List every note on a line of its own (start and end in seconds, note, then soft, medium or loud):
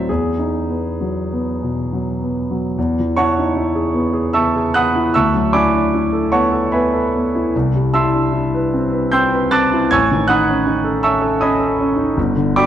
0.00 0.11 A2 soft
0.00 0.11 F#3 soft
0.00 0.11 C4 soft
0.00 0.11 C5 medium
0.00 0.10 D5 medium
0.00 0.11 E5 medium
0.09 2.74 E2 soft
0.09 1.91 G#4 medium
0.39 0.88 D#4 soft
0.70 1.18 B3 soft
1.01 1.49 F#3 soft
1.33 1.80 B3 soft
1.63 2.10 B2 soft
1.93 2.39 F#3 soft
2.22 2.67 B3 soft
2.51 2.77 F#3 soft
2.78 5.11 E2 soft
3.00 3.29 E3 soft
3.16 3.48 E4 soft
3.16 4.31 C#5 soft
3.16 4.31 F#5 medium
3.16 4.31 A5 medium
3.16 4.33 C#6 medium
3.39 3.57 D#4 soft
3.56 3.87 E4 soft
3.75 4.06 G#4 soft
3.94 4.26 B3 soft
4.13 4.46 G#4 soft
4.33 4.66 B3 soft
4.33 4.72 E5 medium
4.33 4.72 A5 medium
4.33 4.72 C#6 medium
4.33 4.74 E6 medium
4.56 4.87 G#4 soft
4.74 5.07 B3 soft
4.74 5.12 F#5 medium
4.74 5.12 B5 medium
4.74 5.12 D#6 medium
4.74 5.14 F#6 medium
4.95 5.15 E4 soft
5.14 7.51 D2 soft
5.14 5.52 E5 medium
5.14 5.52 A5 medium
5.14 5.52 C#6 medium
5.14 5.54 E6 medium
5.34 5.66 F#3 soft
5.53 5.86 E4 soft
5.53 6.30 D5 medium
5.53 6.30 G#5 medium
5.53 6.30 B5 medium
5.53 6.34 D6 medium
5.73 5.94 D4 soft
5.94 6.26 E4 soft
6.13 6.45 A4 soft
6.32 6.65 B3 soft
6.32 6.70 C#5 soft
6.32 6.70 F#5 soft
6.32 6.70 A5 soft
6.32 6.73 C#6 medium
6.52 6.85 A4 soft
6.72 7.06 B3 soft
6.72 7.50 B4 soft
6.72 7.50 E5 soft
6.72 7.50 G#5 soft
6.72 7.53 B5 medium
6.93 7.26 A4 soft
7.16 7.47 B3 soft
7.35 7.54 E4 soft
7.55 9.90 C2 soft
7.75 8.06 G3 soft
7.93 8.26 E4 soft
7.93 9.11 E5 medium
7.93 9.11 A5 medium
7.93 9.11 C6 medium
7.93 9.11 E6 medium
8.14 8.34 D4 soft
8.33 8.66 E4 soft
8.54 8.87 B4 soft
8.74 9.06 C4 soft
8.92 9.26 B4 soft
9.12 9.45 C4 soft
9.12 9.51 G5 medium
9.12 9.51 C6 medium
9.12 9.50 E6 medium
9.12 9.53 G6 medium
9.33 9.66 B4 soft
9.51 9.84 C4 soft
9.51 9.89 A5 medium
9.51 9.89 D6 medium
9.51 9.89 F#6 medium
9.51 9.92 A6 medium
9.72 9.92 E4 soft
9.91 12.12 A1 soft
9.91 10.27 G#5 medium
9.91 10.27 C#6 medium
9.91 10.27 E6 medium
9.91 10.29 G#6 medium
10.11 10.41 D#3 soft
10.28 10.59 D#4 soft
10.28 10.99 F#5 medium
10.28 10.99 B5 medium
10.28 10.99 D#6 medium
10.28 11.02 F#6 medium
10.47 10.66 C#4 soft
10.67 10.96 D#4 soft
10.84 11.15 A4 soft
11.03 11.35 C#4 soft
11.03 11.39 E5 medium
11.03 11.39 A5 medium
11.03 11.39 C#6 medium
11.03 11.42 E6 medium
11.21 11.53 A4 soft
11.41 11.72 C#4 soft
11.41 12.13 D#5 soft
11.41 12.13 G#5 medium
11.41 12.13 B5 medium
11.41 12.16 D#6 medium
11.60 11.90 A4 soft
11.80 12.09 C#4 soft
11.96 12.16 D#4 soft
12.17 12.66 G1 medium
12.36 12.66 D3 soft
12.56 12.66 F#4 soft
12.56 12.66 D5 medium
12.56 12.66 G5 medium
12.56 12.66 B5 medium
12.56 12.66 D6 medium